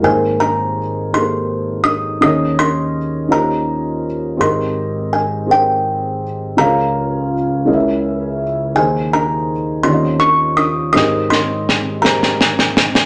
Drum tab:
SD |------------|------------|------------|------------|

SD |------------|o-o-o-oooooo|